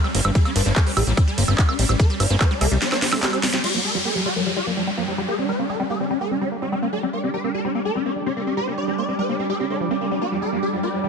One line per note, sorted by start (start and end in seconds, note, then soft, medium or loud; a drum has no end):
0.00 3.63 G3 medium
0.04 0.08 G3 loud
0.04 0.10 D4 medium
0.04 high woodblock soft
0.15 0.21 G1 loud
0.15 0.20 A#3 medium
0.15 0.21 D4 medium
0.15 open hi-hat loud
0.15 ride medium
0.25 0.31 G1 medium
0.25 0.30 G3 medium
0.25 0.31 D4 medium
0.25 closed hi-hat medium
0.25 high woodblock medium
0.35 0.38 G3 loud
0.35 0.41 A4 loud
0.35 kick loud
0.35 closed hi-hat medium
0.35 ride medium
0.45 0.51 A#3 medium
0.45 0.51 D4 medium
0.45 closed hi-hat soft
0.45 high woodblock soft
0.56 0.62 G1 loud
0.56 0.61 G3 medium
0.56 0.62 C5 medium
0.56 open hi-hat loud
0.56 ride medium
0.66 0.72 G1 medium
0.66 0.69 G3 loud
0.66 0.72 D4 medium
0.66 closed hi-hat medium
0.76 0.82 A#3 medium
0.76 0.82 A#4 medium
0.76 kick loud
0.76 clap loud
0.76 closed hi-hat medium
0.76 ride medium
0.76 high woodblock soft
0.87 0.92 G3 medium
0.87 0.92 D4 medium
0.87 open hi-hat medium
0.97 1.03 A1 loud
0.97 1.00 G3 loud
0.97 1.03 A4 medium
0.97 open hi-hat loud
0.97 ride medium
0.97 high woodblock medium
1.07 1.13 A1 medium
1.07 1.12 A#3 medium
1.07 1.13 D4 medium
1.07 closed hi-hat medium
1.17 1.23 G3 medium
1.17 1.23 D4 medium
1.17 kick loud
1.17 closed hi-hat medium
1.17 ride medium
1.17 high woodblock soft
1.28 1.31 G3 loud
1.28 1.34 A4 loud
1.28 closed hi-hat soft
1.38 1.44 G1 medium
1.38 1.43 A#3 medium
1.38 1.44 D4 medium
1.38 open hi-hat loud
1.38 ride medium
1.48 1.54 G1 medium
1.48 1.54 G3 medium
1.48 1.54 D4 medium
1.48 closed hi-hat medium
1.48 high woodblock soft
1.58 1.62 G3 loud
1.58 kick loud
1.58 clap loud
1.58 closed hi-hat medium
1.58 ride medium
1.69 1.74 A#3 medium
1.69 1.75 D4 medium
1.69 high woodblock medium
1.79 1.85 A1 loud
1.79 1.84 G3 medium
1.79 1.85 D4 medium
1.79 open hi-hat loud
1.79 ride medium
1.89 1.95 A1 medium
1.89 1.92 G3 loud
1.89 1.95 D4 medium
1.89 closed hi-hat medium
1.89 high woodblock soft
2.00 2.05 A#3 medium
2.00 2.05 A#4 loud
2.00 kick loud
2.00 closed hi-hat medium
2.00 ride medium
2.10 2.15 G3 medium
2.10 2.16 D4 medium
2.10 closed hi-hat soft
2.20 2.26 G1 loud
2.20 2.23 G3 loud
2.20 2.26 D5 medium
2.20 open hi-hat loud
2.20 ride medium
2.20 high woodblock soft
2.30 2.37 G1 medium
2.30 2.36 A#3 medium
2.30 2.36 D4 medium
2.30 closed hi-hat medium
2.41 2.46 G3 medium
2.41 2.47 C5 medium
2.41 kick loud
2.41 clap loud
2.41 closed hi-hat medium
2.41 ride medium
2.41 high woodblock medium
2.51 2.54 G3 loud
2.51 2.57 D4 medium
2.51 closed hi-hat soft
2.61 2.67 C2 loud
2.61 2.67 A#3 medium
2.61 2.67 A#4 loud
2.61 open hi-hat loud
2.61 ride medium
2.61 high woodblock soft
2.71 2.78 C2 medium
2.71 2.77 G3 medium
2.71 2.77 D4 medium
2.71 closed hi-hat medium
2.82 2.85 G3 loud
2.82 2.88 D4 medium
2.82 snare medium
2.82 closed hi-hat medium
2.82 ride medium
2.92 2.97 A#3 medium
2.92 2.98 D5 loud
2.92 snare medium
2.92 closed hi-hat soft
2.92 high woodblock soft
3.02 3.08 G3 medium
3.02 3.08 D4 medium
3.02 snare medium
3.02 open hi-hat loud
3.02 ride medium
3.13 3.21 A3 medium
3.13 3.18 D4 medium
3.13 snare medium
3.13 open hi-hat medium
3.13 high woodblock medium
3.23 3.31 G4 medium
3.23 snare medium
3.23 clap loud
3.23 closed hi-hat medium
3.23 ride medium
3.33 3.39 D4 medium
3.33 3.38 G4 medium
3.33 closed hi-hat soft
3.33 high woodblock soft
3.43 3.49 G3 medium
3.43 3.49 D4 medium
3.43 snare loud
3.43 open hi-hat loud
3.43 ride medium
3.54 3.59 G3 medium
3.54 3.60 D4 medium
3.54 snare medium
3.54 closed hi-hat medium
3.64 3.67 G3 loud
3.64 11.09 G3 medium
3.64 11.09 D4 medium
3.64 3.70 G4 loud
3.64 crash medium
3.64 downlifter medium
3.74 3.80 G3 medium
3.74 3.80 A#3 medium
3.85 3.90 G3 medium
3.85 3.90 A#4 medium
3.95 3.98 G3 loud
3.95 4.01 G3 medium
4.05 4.10 A#3 medium
4.05 4.11 A4 medium
4.14 4.21 G3 medium
4.14 11.09 G4 medium
4.14 10.85 G5 medium
4.26 4.29 G3 loud
4.26 4.31 G4 medium
4.36 4.42 G3 medium
4.36 4.41 A#3 medium
4.46 4.52 G3 medium
4.46 4.51 G3 medium
4.56 4.60 G3 loud
4.56 4.62 G4 medium
4.56 11.09 D6 medium
4.67 4.73 G3 medium
4.67 4.72 A#3 medium
4.77 4.83 G3 medium
4.77 4.82 G3 medium
4.87 4.90 G3 loud
4.97 5.03 G3 medium
4.97 5.03 A#3 medium
5.08 5.13 G3 medium
5.08 5.14 G3 medium
5.18 5.24 G3 medium
5.18 5.21 G3 loud
5.28 5.34 A#3 medium
5.28 5.34 A4 loud
5.39 5.44 G3 medium
5.39 5.44 D4 medium
5.49 5.52 G3 loud
5.49 5.55 C5 medium
5.59 5.64 A#3 medium
5.59 5.65 D4 medium
5.69 5.75 G3 medium
5.69 5.75 A#4 medium
5.80 5.83 G3 loud
5.80 5.86 D4 medium
5.90 5.95 A#3 medium
5.90 5.96 A4 medium
6.00 6.06 G3 medium
6.00 6.06 D4 medium
6.10 6.14 G3 loud
6.10 6.16 D4 medium
6.21 6.26 A#3 medium
6.21 6.27 A4 loud
6.31 6.36 G3 medium
6.31 6.37 D4 medium
6.41 6.45 G3 loud
6.41 6.47 D4 medium
6.52 6.57 A#3 medium
6.62 6.67 G3 medium
6.62 6.68 D4 medium
6.72 6.75 G3 loud
6.72 6.78 D4 medium
6.82 6.88 A#3 medium
6.82 6.88 D4 medium
6.93 6.98 G3 medium
6.93 6.99 A#4 loud
7.03 7.06 G3 loud
7.03 7.09 D4 medium
7.13 7.19 A#3 medium
7.13 7.19 D5 medium
7.24 7.29 G3 medium
7.24 7.29 D4 medium
7.34 7.37 G3 medium
7.34 7.40 C5 medium
7.44 7.49 A#3 medium
7.44 7.50 D4 medium
7.54 7.60 G3 medium
7.54 7.60 A#4 medium
7.65 7.68 G3 loud
7.65 7.71 D4 medium
7.75 7.80 A#3 medium
7.75 7.81 D4 medium
7.85 7.91 G3 medium
7.85 7.91 A#4 loud
7.95 7.99 G3 loud
7.95 8.01 D4 medium
8.06 8.11 A#3 medium
8.06 8.12 D4 medium
8.16 8.21 G3 medium
8.26 8.29 G3 loud
8.26 8.32 D4 medium
8.37 8.42 A#3 medium
8.37 8.42 D4 medium
8.47 8.52 G3 medium
8.47 8.53 D4 medium
8.57 8.60 G3 loud
8.57 8.63 C5 loud
8.67 8.73 A#3 medium
8.67 8.73 D4 medium
8.78 8.83 G3 medium
8.78 8.84 D#5 medium
8.88 8.91 G3 loud
8.88 8.94 D4 medium
8.98 9.04 A#3 medium
8.98 9.04 D5 medium
9.08 9.14 G3 medium
9.08 9.14 D4 medium
9.19 9.22 G3 loud
9.19 9.25 C5 medium
9.29 9.34 A#3 medium
9.29 9.35 D4 medium
9.39 9.45 G3 medium
9.39 9.45 D4 medium
9.50 9.53 G3 loud
9.50 9.55 A4 medium
9.60 9.66 D4 medium
9.60 9.65 G4 medium
9.70 9.75 A3 medium
9.70 9.76 D4 medium
9.80 9.88 F3 loud
9.91 9.94 A#3 medium
9.91 9.97 D4 medium
10.01 10.06 A#3 medium
10.01 10.07 D4 medium
10.11 10.19 G3 loud
10.11 10.17 D4 medium
10.21 10.27 A#3 medium
10.21 10.27 G4 loud
10.32 10.37 G3 medium
10.32 10.38 G3 medium
10.42 10.45 G3 loud
10.42 10.48 A#4 medium
10.52 10.58 G3 medium
10.52 10.58 A#3 medium
10.63 10.68 G3 medium
10.63 10.68 A4 medium
10.72 10.79 G3 medium
10.72 10.76 G3 loud
10.72 11.09 F5 medium
10.83 10.88 A#3 medium
10.83 10.89 G4 medium
10.93 10.99 G3 medium
11.04 11.07 G3 loud
11.04 11.09 G3 medium